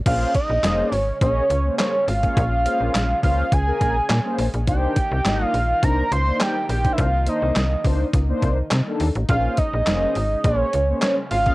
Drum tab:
CC |x---------------|----------------|----------------|----------------|
HH |x-x-x-o-x-x-x-ox|x-x-x-o-x-x-x-ox|x-x-x-o-x-x-x-ox|x-x-x-o-x-x-x-ox|
CP |----x-------x---|----x-------x---|----x-------x---|----x-------x---|
SD |----o-------o---|----o-------o---|----o-------o---|----o-------o---|
BD |o-o-----o------o|o-----o-o-o-----|o-o-----o------o|o-----o-o-o-----|

CC |----------------|
HH |x-x-x-o-x-x-x-ox|
CP |----x-------x---|
SD |----o-------o---|
BD |o-o-----o------o|